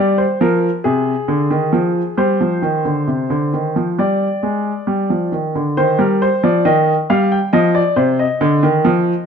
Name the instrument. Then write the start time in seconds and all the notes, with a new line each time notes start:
grand piano
Already playing: G3 D5
0.18 C5
0.41 F3 A#4
0.84 C3 G#4
1.28 D3
1.50 D#3
1.73 F3
2.17 G3 C5
2.41 F3
2.62 D#3
2.85 D3
3.07 C3
3.30 D3
3.53 D#3
3.76 F3
3.98 G3 D5
4.43 G#3
4.87 G3
5.10 F3
5.32 D#3
5.55 D3
5.77 D#3 C5
5.99 G3 A#4
6.22 C5
6.43 F3 D5
6.65 D#3 D#5
7.10 G3 F5
7.32 G5
7.53 F3 D#5
7.75 D5
7.96 C3 C5
8.19 D#5
8.41 D3
8.63 D#3
8.85 F3